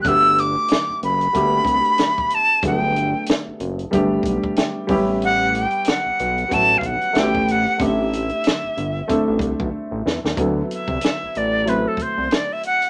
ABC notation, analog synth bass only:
X:1
M:4/4
L:1/16
Q:"Swing 16ths" 1/4=93
K:Dmix
V:1 name="Analog synth bass" clef=bass
G,,,4 z F,,, F,,,2 G,,,2 C,, z4 z | G,,,4 z F,,, F,,,2 G,,,2 B,,, z3 A,,,2- | A,,,4 z B,,, B,,,2 A,,,2 B,,, z A,,,4 | A,,,4 z G,,, G,,,2 z A,,, C,, B,,, z A,,, E,, ^D,, |
D,,2 z C,, z A,,, A,,,4 C,, C,, z4 |]